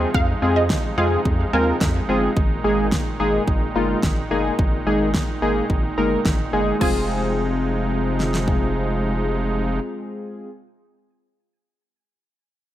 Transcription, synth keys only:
0.42 0.65 G#3 medium
0.42 0.65 C4 medium
0.42 0.65 F4 medium
0.42 0.65 G#4 medium
0.98 1.20 G#3 medium
0.98 1.20 C4 medium
0.98 1.20 F4 medium
0.98 1.20 G#4 medium
1.53 1.76 G#3 medium
1.53 1.76 C4 medium
1.53 1.76 F4 medium
1.53 1.76 A#4 medium
2.09 2.31 G#3 medium
2.09 2.31 C4 medium
2.09 2.31 F4 medium
2.09 2.31 G#4 medium
2.64 2.87 G#3 medium
2.64 2.87 A#3 medium
2.64 2.87 D#4 medium
2.64 2.87 G#4 medium
3.20 3.42 G#3 medium
3.20 3.42 A#3 medium
3.20 3.42 D#4 medium
3.20 3.42 G#4 medium
3.75 3.98 G#3 medium
3.75 3.98 A#3 medium
3.75 3.98 D#4 medium
3.75 3.98 F4 medium
4.31 4.53 G#3 medium
4.31 4.53 A#3 medium
4.31 4.53 D#4 medium
4.31 4.53 G#4 medium
4.87 5.09 G#3 medium
4.87 5.09 A#3 medium
4.87 5.09 D#4 medium
4.87 5.09 G#4 medium
5.42 5.65 G#3 medium
5.42 5.65 A#3 medium
5.42 5.65 D#4 medium
5.42 5.65 G#4 medium
5.98 6.20 G#3 medium
5.98 6.20 A#3 medium
5.98 6.20 D#4 medium
5.98 6.20 A#4 medium
6.53 6.76 G#3 medium
6.53 6.76 A#3 medium
6.53 6.76 D#4 medium
6.53 6.76 G#4 medium
6.79 10.48 G#3 medium
6.79 10.49 C4 medium
6.79 10.50 F4 medium
6.79 10.50 G#4 medium

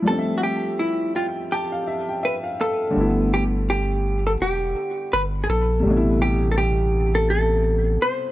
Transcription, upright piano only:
0.02 2.89 F3 medium
0.02 2.91 G3 medium
0.07 2.92 A3 medium
0.07 2.93 C4 medium
0.12 0.17 D4 medium
0.18 1.86 E5 medium
1.15 1.49 G5 medium
1.52 1.71 A5 medium
1.72 1.86 F5 medium
1.87 2.07 E5 medium
2.09 2.22 G5 medium
2.23 2.43 E5 medium
2.43 2.58 F5 medium
2.60 2.93 F5 medium
2.90 5.78 D3 medium
2.90 5.79 G3 medium
2.95 5.81 A3 medium
2.95 5.82 B3 medium
3.00 5.83 E4 medium
5.80 8.32 C3 medium
5.80 8.32 G3 medium
5.85 8.32 B2 medium
5.85 8.32 A3 medium
5.90 5.95 D4 medium
5.96 8.32 E4 medium

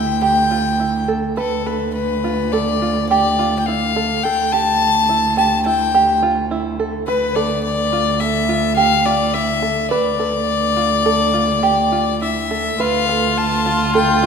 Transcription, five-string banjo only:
0.00 0.20 E4 medium
0.22 0.48 G4 medium
0.51 0.77 F4 medium
0.80 1.06 E4 medium
1.08 1.34 A4 medium
1.37 1.63 B4 medium
1.66 2.18 A4 medium
2.24 2.50 F4 medium
2.53 2.79 A4 medium
2.82 3.08 F4 medium
3.11 3.36 G4 medium
3.39 3.64 F4 medium
3.68 3.93 E4 medium
3.96 4.21 A4 medium
4.25 4.50 A4 medium
4.53 5.03 G4 medium
5.09 5.34 E4 medium
5.37 5.62 G4 medium
5.66 5.91 E4 medium
5.95 6.20 G4 medium
6.23 6.48 F4 medium
6.51 6.76 E4 medium
6.79 7.05 A4 medium
7.08 7.33 B4 medium
7.36 7.87 A4 medium
7.93 8.18 F4 medium
8.21 8.46 A4 medium
8.49 8.74 F4 medium
8.77 9.03 G4 medium
9.06 9.31 F4 medium
9.34 9.60 E4 medium
9.62 9.88 A4 medium
9.91 10.17 B4 medium
10.20 10.71 A4 medium
10.77 11.02 F4 medium
11.06 11.31 A4 medium
11.34 11.60 F4 medium
11.63 11.89 G4 medium
11.92 12.19 F4 medium
12.22 12.48 E4 medium
12.51 12.77 A4 medium
12.80 13.06 B4 medium
13.09 13.60 A4 medium
13.66 13.92 F4 medium
13.95 14.21 A4 medium

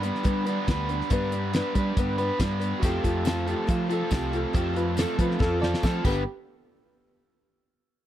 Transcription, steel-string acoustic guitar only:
0.02 0.23 G3 soft
0.02 0.23 B3 soft
0.02 0.24 D4 medium
0.02 0.24 B4 medium
0.23 0.45 G2 medium
0.23 0.46 D3 medium
0.23 0.46 G3 medium
0.23 0.46 B3 medium
0.23 0.45 D4 medium
0.23 0.44 B4 medium
0.45 0.65 G3 soft
0.45 0.67 B3 medium
0.45 0.67 D4 medium
0.45 0.67 B4 medium
0.66 0.88 G3 medium
0.66 0.89 B3 medium
0.66 0.88 D4 medium
0.66 0.87 B4 medium
0.88 1.11 G3 soft
0.88 1.11 B3 soft
0.88 1.11 D4 soft
0.88 1.10 B4 medium
1.11 1.32 G2 medium
1.11 1.32 D3 medium
1.11 1.33 G3 medium
1.11 1.32 B3 medium
1.11 1.32 D4 medium
1.11 1.30 B4 medium
1.31 1.52 G3 soft
1.31 1.54 B3 medium
1.31 1.54 D4 medium
1.31 1.53 B4 medium
1.53 1.75 G3 medium
1.53 1.76 B3 medium
1.53 1.76 D4 medium
1.53 1.74 B4 medium
1.76 1.97 G3 soft
1.76 1.97 B3 medium
1.76 1.97 D4 medium
1.76 1.97 B4 medium
1.97 2.18 G2 medium
1.97 2.18 D3 medium
1.97 2.19 G3 medium
1.97 2.19 B3 medium
1.97 2.19 D4 medium
1.97 2.17 B4 medium
2.18 2.39 G3 medium
2.18 2.40 B3 medium
2.18 2.40 D4 medium
2.18 2.40 B4 medium
2.40 2.61 G3 medium
2.40 2.61 B3 medium
2.40 2.59 D4 medium
2.40 2.58 B4 medium
2.60 2.82 G3 soft
2.60 2.83 B3 soft
2.60 2.82 D4 medium
2.60 2.82 B4 medium
2.82 3.04 F3 medium
2.82 3.04 C4 medium
2.82 3.03 F4 medium
2.82 3.02 A4 medium
3.03 3.24 C4 soft
3.03 3.25 F4 medium
3.03 3.25 A4 medium
3.24 3.46 F3 medium
3.24 3.47 C4 medium
3.24 3.47 F4 medium
3.24 3.45 A4 medium
3.46 3.66 C4 soft
3.46 3.67 F4 medium
3.46 3.68 A4 medium
3.67 3.89 F3 medium
3.67 3.89 C4 medium
3.67 3.88 F4 medium
3.67 3.86 A4 medium
3.87 4.09 C4 soft
3.87 4.10 F4 medium
3.87 4.10 A4 medium
4.09 4.32 F3 medium
4.09 4.32 C4 medium
4.09 4.32 F4 medium
4.09 4.30 A4 medium
4.31 4.52 C4 soft
4.31 4.53 F4 medium
4.31 4.53 A4 medium
4.53 4.75 F3 medium
4.53 4.75 C4 medium
4.53 4.74 F4 medium
4.53 4.72 A4 medium
4.73 4.96 C4 soft
4.73 4.97 F4 medium
4.73 4.96 A4 medium
4.96 5.18 F3 medium
4.96 5.18 C4 medium
4.96 5.18 F4 medium
4.96 5.16 A4 medium
5.17 5.38 C4 soft
5.17 5.39 F4 medium
5.17 5.39 A4 medium
5.39 5.61 F3 medium
5.39 5.61 C4 medium
5.39 5.61 F4 loud
5.39 5.59 A4 medium
5.60 5.82 C4 medium
5.60 5.83 F4 medium
5.60 5.82 A4 medium
5.82 6.04 F3 medium
5.82 6.05 C4 medium
5.82 6.05 F4 medium
5.82 6.06 A4 medium
6.04 6.22 G2 medium
6.04 6.22 D3 medium
6.04 6.22 G3 medium
6.04 6.22 B3 medium
6.04 6.22 D4 medium
6.04 6.23 B4 medium

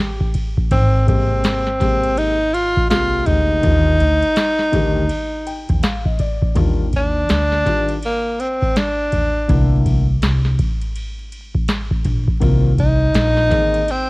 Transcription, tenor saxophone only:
0.00 0.35 G4 loud
0.71 1.05 C4 medium
1.08 2.19 C4 medium
2.18 2.55 D#4 loud
2.54 2.90 F4 loud
2.90 3.28 F4 loud
3.26 5.83 D#4 loud
6.97 8.00 D4 loud
8.06 8.42 A#3 medium
8.41 8.79 C4 medium
8.78 9.86 D4 medium
12.80 13.92 D#4 loud
13.91 14.10 C4 loud

